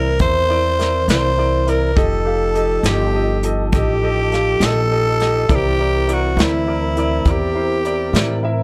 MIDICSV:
0, 0, Header, 1, 6, 480
1, 0, Start_track
1, 0, Tempo, 588005
1, 1602, Time_signature, 12, 3, 24, 8
1, 7046, End_track
2, 0, Start_track
2, 0, Title_t, "Grand piano"
2, 0, Program_c, 0, 0
2, 0, Note_on_c, 0, 64, 51
2, 0, Note_on_c, 0, 70, 46
2, 0, Note_on_c, 0, 74, 52
2, 102, Note_off_c, 0, 64, 0
2, 102, Note_off_c, 0, 70, 0
2, 107, Note_off_c, 0, 74, 0
2, 162, Note_on_c, 0, 64, 51
2, 168, Note_on_c, 0, 70, 49
2, 172, Note_on_c, 0, 72, 58
2, 342, Note_off_c, 0, 64, 0
2, 345, Note_off_c, 0, 70, 0
2, 347, Note_off_c, 0, 72, 0
2, 399, Note_on_c, 0, 64, 54
2, 407, Note_on_c, 0, 70, 47
2, 411, Note_on_c, 0, 74, 57
2, 580, Note_off_c, 0, 64, 0
2, 584, Note_off_c, 0, 70, 0
2, 586, Note_off_c, 0, 74, 0
2, 642, Note_on_c, 0, 64, 53
2, 649, Note_on_c, 0, 70, 48
2, 655, Note_on_c, 0, 74, 52
2, 822, Note_off_c, 0, 64, 0
2, 825, Note_off_c, 0, 70, 0
2, 828, Note_off_c, 0, 74, 0
2, 887, Note_on_c, 0, 64, 49
2, 892, Note_on_c, 0, 70, 44
2, 897, Note_on_c, 0, 74, 55
2, 1064, Note_off_c, 0, 64, 0
2, 1067, Note_off_c, 0, 70, 0
2, 1069, Note_off_c, 0, 74, 0
2, 1125, Note_on_c, 0, 64, 53
2, 1129, Note_on_c, 0, 70, 46
2, 1133, Note_on_c, 0, 74, 55
2, 1303, Note_off_c, 0, 64, 0
2, 1305, Note_off_c, 0, 70, 0
2, 1307, Note_off_c, 0, 74, 0
2, 1361, Note_on_c, 0, 64, 55
2, 1369, Note_on_c, 0, 70, 50
2, 1376, Note_on_c, 0, 74, 63
2, 1542, Note_off_c, 0, 64, 0
2, 1546, Note_off_c, 0, 70, 0
2, 1549, Note_off_c, 0, 74, 0
2, 1596, Note_on_c, 0, 67, 62
2, 1608, Note_on_c, 0, 69, 58
2, 1612, Note_on_c, 0, 75, 69
2, 1779, Note_off_c, 0, 67, 0
2, 1785, Note_off_c, 0, 69, 0
2, 1787, Note_off_c, 0, 75, 0
2, 1836, Note_on_c, 0, 67, 54
2, 1843, Note_on_c, 0, 69, 46
2, 1849, Note_on_c, 0, 77, 55
2, 2019, Note_off_c, 0, 67, 0
2, 2023, Note_off_c, 0, 69, 0
2, 2026, Note_off_c, 0, 77, 0
2, 2078, Note_on_c, 0, 67, 51
2, 2087, Note_on_c, 0, 69, 49
2, 2088, Note_on_c, 0, 75, 57
2, 2260, Note_off_c, 0, 67, 0
2, 2265, Note_off_c, 0, 69, 0
2, 2265, Note_off_c, 0, 75, 0
2, 2314, Note_on_c, 0, 67, 53
2, 2318, Note_on_c, 0, 69, 43
2, 2326, Note_on_c, 0, 75, 52
2, 2498, Note_off_c, 0, 67, 0
2, 2500, Note_off_c, 0, 69, 0
2, 2504, Note_off_c, 0, 75, 0
2, 2560, Note_on_c, 0, 67, 47
2, 2566, Note_on_c, 0, 69, 40
2, 2574, Note_on_c, 0, 75, 54
2, 2741, Note_off_c, 0, 67, 0
2, 2744, Note_off_c, 0, 69, 0
2, 2748, Note_off_c, 0, 75, 0
2, 2804, Note_on_c, 0, 67, 51
2, 2811, Note_on_c, 0, 69, 48
2, 2816, Note_on_c, 0, 75, 60
2, 2983, Note_off_c, 0, 67, 0
2, 2987, Note_off_c, 0, 69, 0
2, 2989, Note_off_c, 0, 75, 0
2, 3045, Note_on_c, 0, 67, 55
2, 3049, Note_on_c, 0, 69, 49
2, 3057, Note_on_c, 0, 75, 58
2, 3224, Note_off_c, 0, 67, 0
2, 3226, Note_off_c, 0, 69, 0
2, 3230, Note_off_c, 0, 75, 0
2, 3286, Note_on_c, 0, 67, 55
2, 3293, Note_on_c, 0, 69, 48
2, 3297, Note_on_c, 0, 75, 60
2, 3464, Note_off_c, 0, 67, 0
2, 3468, Note_off_c, 0, 69, 0
2, 3470, Note_off_c, 0, 75, 0
2, 3519, Note_on_c, 0, 67, 52
2, 3527, Note_on_c, 0, 69, 43
2, 3537, Note_on_c, 0, 77, 53
2, 3701, Note_off_c, 0, 67, 0
2, 3705, Note_off_c, 0, 69, 0
2, 3710, Note_off_c, 0, 77, 0
2, 3756, Note_on_c, 0, 67, 50
2, 3764, Note_on_c, 0, 69, 48
2, 3764, Note_on_c, 0, 75, 59
2, 3939, Note_off_c, 0, 67, 0
2, 3943, Note_off_c, 0, 69, 0
2, 3944, Note_off_c, 0, 75, 0
2, 4002, Note_on_c, 0, 67, 53
2, 4009, Note_on_c, 0, 69, 50
2, 4018, Note_on_c, 0, 75, 55
2, 4182, Note_off_c, 0, 67, 0
2, 4186, Note_off_c, 0, 69, 0
2, 4190, Note_off_c, 0, 75, 0
2, 4247, Note_on_c, 0, 67, 58
2, 4249, Note_on_c, 0, 69, 49
2, 4256, Note_on_c, 0, 75, 65
2, 4425, Note_off_c, 0, 67, 0
2, 4426, Note_off_c, 0, 69, 0
2, 4430, Note_off_c, 0, 75, 0
2, 4479, Note_on_c, 0, 64, 62
2, 4491, Note_on_c, 0, 70, 57
2, 4494, Note_on_c, 0, 74, 69
2, 4661, Note_off_c, 0, 64, 0
2, 4667, Note_off_c, 0, 70, 0
2, 4669, Note_off_c, 0, 74, 0
2, 4728, Note_on_c, 0, 64, 48
2, 4733, Note_on_c, 0, 70, 51
2, 4740, Note_on_c, 0, 74, 52
2, 4906, Note_off_c, 0, 64, 0
2, 4908, Note_off_c, 0, 70, 0
2, 4912, Note_off_c, 0, 74, 0
2, 4959, Note_on_c, 0, 64, 53
2, 4969, Note_on_c, 0, 70, 51
2, 4975, Note_on_c, 0, 74, 56
2, 5141, Note_off_c, 0, 64, 0
2, 5146, Note_off_c, 0, 70, 0
2, 5149, Note_off_c, 0, 74, 0
2, 5205, Note_on_c, 0, 64, 48
2, 5212, Note_on_c, 0, 70, 42
2, 5215, Note_on_c, 0, 74, 53
2, 5384, Note_off_c, 0, 64, 0
2, 5387, Note_off_c, 0, 70, 0
2, 5389, Note_off_c, 0, 74, 0
2, 5440, Note_on_c, 0, 64, 49
2, 5448, Note_on_c, 0, 70, 48
2, 5452, Note_on_c, 0, 74, 49
2, 5622, Note_off_c, 0, 64, 0
2, 5626, Note_off_c, 0, 70, 0
2, 5627, Note_off_c, 0, 74, 0
2, 5685, Note_on_c, 0, 64, 54
2, 5694, Note_on_c, 0, 70, 46
2, 5701, Note_on_c, 0, 74, 57
2, 5864, Note_off_c, 0, 64, 0
2, 5868, Note_off_c, 0, 70, 0
2, 5872, Note_off_c, 0, 74, 0
2, 5927, Note_on_c, 0, 64, 57
2, 5931, Note_on_c, 0, 70, 49
2, 5940, Note_on_c, 0, 74, 58
2, 6105, Note_off_c, 0, 64, 0
2, 6107, Note_off_c, 0, 70, 0
2, 6111, Note_off_c, 0, 74, 0
2, 6162, Note_on_c, 0, 64, 52
2, 6166, Note_on_c, 0, 70, 46
2, 6173, Note_on_c, 0, 72, 61
2, 6342, Note_off_c, 0, 64, 0
2, 6345, Note_off_c, 0, 70, 0
2, 6348, Note_off_c, 0, 72, 0
2, 6409, Note_on_c, 0, 64, 47
2, 6412, Note_on_c, 0, 70, 43
2, 6416, Note_on_c, 0, 74, 59
2, 6586, Note_off_c, 0, 64, 0
2, 6588, Note_off_c, 0, 70, 0
2, 6589, Note_off_c, 0, 74, 0
2, 6642, Note_on_c, 0, 64, 58
2, 6646, Note_on_c, 0, 70, 53
2, 6656, Note_on_c, 0, 74, 71
2, 6822, Note_off_c, 0, 64, 0
2, 6825, Note_off_c, 0, 70, 0
2, 6830, Note_off_c, 0, 74, 0
2, 6881, Note_on_c, 0, 64, 63
2, 6890, Note_on_c, 0, 70, 57
2, 6893, Note_on_c, 0, 76, 67
2, 7046, Note_off_c, 0, 64, 0
2, 7046, Note_off_c, 0, 70, 0
2, 7046, Note_off_c, 0, 76, 0
2, 7046, End_track
3, 0, Start_track
3, 0, Title_t, "Tenor saxophone"
3, 0, Program_c, 1, 66
3, 0, Note_on_c, 1, 70, 100
3, 139, Note_off_c, 1, 70, 0
3, 175, Note_on_c, 1, 72, 106
3, 856, Note_off_c, 1, 72, 0
3, 893, Note_on_c, 1, 72, 99
3, 1378, Note_on_c, 1, 70, 82
3, 1391, Note_off_c, 1, 72, 0
3, 1605, Note_on_c, 1, 69, 91
3, 1617, Note_off_c, 1, 70, 0
3, 2340, Note_on_c, 1, 67, 75
3, 2352, Note_off_c, 1, 69, 0
3, 2831, Note_off_c, 1, 67, 0
3, 3059, Note_on_c, 1, 67, 86
3, 3797, Note_on_c, 1, 69, 107
3, 3809, Note_off_c, 1, 67, 0
3, 4532, Note_on_c, 1, 67, 96
3, 4545, Note_off_c, 1, 69, 0
3, 5001, Note_on_c, 1, 66, 80
3, 5013, Note_off_c, 1, 67, 0
3, 5245, Note_on_c, 1, 64, 86
3, 5257, Note_off_c, 1, 66, 0
3, 5962, Note_on_c, 1, 67, 81
3, 5974, Note_off_c, 1, 64, 0
3, 6902, Note_off_c, 1, 67, 0
3, 7046, End_track
4, 0, Start_track
4, 0, Title_t, "Tonewheel organ"
4, 0, Program_c, 2, 16
4, 0, Note_on_c, 2, 52, 61
4, 0, Note_on_c, 2, 60, 58
4, 0, Note_on_c, 2, 70, 60
4, 1568, Note_off_c, 2, 52, 0
4, 1568, Note_off_c, 2, 70, 0
4, 1569, Note_off_c, 2, 60, 0
4, 1607, Note_on_c, 2, 63, 63
4, 1610, Note_on_c, 2, 53, 58
4, 1613, Note_on_c, 2, 69, 65
4, 4457, Note_off_c, 2, 63, 0
4, 4458, Note_off_c, 2, 53, 0
4, 4460, Note_off_c, 2, 69, 0
4, 4486, Note_on_c, 2, 70, 59
4, 4492, Note_on_c, 2, 52, 65
4, 4492, Note_on_c, 2, 60, 60
4, 7046, Note_off_c, 2, 52, 0
4, 7046, Note_off_c, 2, 60, 0
4, 7046, Note_off_c, 2, 70, 0
4, 7046, End_track
5, 0, Start_track
5, 0, Title_t, "Upright bass"
5, 0, Program_c, 3, 32
5, 0, Note_on_c, 3, 36, 84
5, 137, Note_off_c, 3, 36, 0
5, 165, Note_on_c, 3, 40, 78
5, 862, Note_off_c, 3, 40, 0
5, 881, Note_on_c, 3, 36, 78
5, 1580, Note_off_c, 3, 36, 0
5, 1605, Note_on_c, 3, 29, 65
5, 2302, Note_off_c, 3, 29, 0
5, 2313, Note_on_c, 3, 31, 85
5, 3016, Note_off_c, 3, 31, 0
5, 3040, Note_on_c, 3, 33, 82
5, 3740, Note_off_c, 3, 33, 0
5, 3758, Note_on_c, 3, 34, 84
5, 4459, Note_off_c, 3, 34, 0
5, 4486, Note_on_c, 3, 36, 66
5, 5183, Note_off_c, 3, 36, 0
5, 5198, Note_on_c, 3, 38, 86
5, 5899, Note_off_c, 3, 38, 0
5, 5921, Note_on_c, 3, 40, 83
5, 6621, Note_off_c, 3, 40, 0
5, 6638, Note_on_c, 3, 45, 83
5, 7046, Note_off_c, 3, 45, 0
5, 7046, End_track
6, 0, Start_track
6, 0, Title_t, "Drums"
6, 156, Note_on_c, 9, 42, 80
6, 164, Note_on_c, 9, 36, 101
6, 238, Note_off_c, 9, 42, 0
6, 245, Note_off_c, 9, 36, 0
6, 647, Note_on_c, 9, 42, 51
6, 662, Note_on_c, 9, 38, 29
6, 729, Note_off_c, 9, 42, 0
6, 744, Note_off_c, 9, 38, 0
6, 885, Note_on_c, 9, 42, 70
6, 899, Note_on_c, 9, 38, 96
6, 966, Note_off_c, 9, 42, 0
6, 981, Note_off_c, 9, 38, 0
6, 1367, Note_on_c, 9, 42, 51
6, 1448, Note_off_c, 9, 42, 0
6, 1604, Note_on_c, 9, 42, 71
6, 1605, Note_on_c, 9, 36, 103
6, 1686, Note_off_c, 9, 42, 0
6, 1687, Note_off_c, 9, 36, 0
6, 2083, Note_on_c, 9, 42, 55
6, 2164, Note_off_c, 9, 42, 0
6, 2317, Note_on_c, 9, 42, 74
6, 2332, Note_on_c, 9, 38, 97
6, 2399, Note_off_c, 9, 42, 0
6, 2413, Note_off_c, 9, 38, 0
6, 2800, Note_on_c, 9, 42, 65
6, 2882, Note_off_c, 9, 42, 0
6, 3039, Note_on_c, 9, 42, 78
6, 3044, Note_on_c, 9, 36, 96
6, 3121, Note_off_c, 9, 42, 0
6, 3126, Note_off_c, 9, 36, 0
6, 3526, Note_on_c, 9, 42, 54
6, 3540, Note_on_c, 9, 38, 29
6, 3607, Note_off_c, 9, 42, 0
6, 3622, Note_off_c, 9, 38, 0
6, 3761, Note_on_c, 9, 42, 78
6, 3776, Note_on_c, 9, 38, 93
6, 3843, Note_off_c, 9, 42, 0
6, 3857, Note_off_c, 9, 38, 0
6, 4244, Note_on_c, 9, 42, 56
6, 4259, Note_on_c, 9, 38, 30
6, 4326, Note_off_c, 9, 42, 0
6, 4340, Note_off_c, 9, 38, 0
6, 4484, Note_on_c, 9, 42, 72
6, 4485, Note_on_c, 9, 36, 100
6, 4565, Note_off_c, 9, 42, 0
6, 4567, Note_off_c, 9, 36, 0
6, 4969, Note_on_c, 9, 42, 52
6, 5050, Note_off_c, 9, 42, 0
6, 5211, Note_on_c, 9, 42, 64
6, 5225, Note_on_c, 9, 38, 92
6, 5292, Note_off_c, 9, 42, 0
6, 5307, Note_off_c, 9, 38, 0
6, 5686, Note_on_c, 9, 42, 58
6, 5768, Note_off_c, 9, 42, 0
6, 5920, Note_on_c, 9, 42, 75
6, 5924, Note_on_c, 9, 36, 100
6, 6002, Note_off_c, 9, 42, 0
6, 6006, Note_off_c, 9, 36, 0
6, 6406, Note_on_c, 9, 42, 56
6, 6488, Note_off_c, 9, 42, 0
6, 6647, Note_on_c, 9, 42, 77
6, 6662, Note_on_c, 9, 38, 102
6, 6729, Note_off_c, 9, 42, 0
6, 6744, Note_off_c, 9, 38, 0
6, 7046, End_track
0, 0, End_of_file